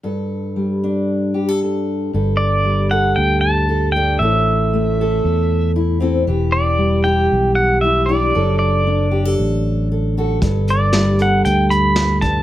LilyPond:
<<
  \new Staff \with { instrumentName = "Pedal steel guitar" } { \time 4/4 \key g \major \tempo 4 = 116 r1 | r8 d''4 fis''8 g''8 a''4 g''8 | e''2. r4 | r8 d''4 g''4 fis''8 e''8 d''8~ |
d''8 d''4. r2 | r8 d''4 fis''8 g''8 b''4 a''8 | }
  \new Staff \with { instrumentName = "Steel-string acoustic guitar" } { \time 4/4 \key g \major << { a'4. d'4 g'16 a'16 a'4 | a'4. a'4. a'8 <d' a'>8 | a'4. a'4. e'8 <c' e' a'>8 | g'4. g'4. e'8 <d' e' g'>8 |
a'4. g'16 a'4~ a'16 a'8 <fis' a'>8 | a'4. a'2~ a'8 | } \\ { g,4 g2. | g,4 g2. | a,4 a2. | e4 g2. |
fis4 d'2. | g,4 g2~ g8 g,8 | } >> }
  \new Staff \with { instrumentName = "Fingered electric bass" } { \clef bass \time 4/4 \key g \major r1 | g,,2 d,2 | a,,2 e,2 | e,,2 b,,2 |
fis,,2 a,,2 | g,,2 d,2 | }
  \new DrumStaff \with { instrumentName = "Drums" } \drummode { \time 4/4 r4 r4 r4 r4 | r4 r4 r4 r4 | r4 r4 r4 r4 | r4 r4 r4 r4 |
r4 r4 r4 r4 | <hh bd>8 hh8 <hh sn>8 hh8 hh8 hh8 <hh sn>8 <hh bd>8 | }
>>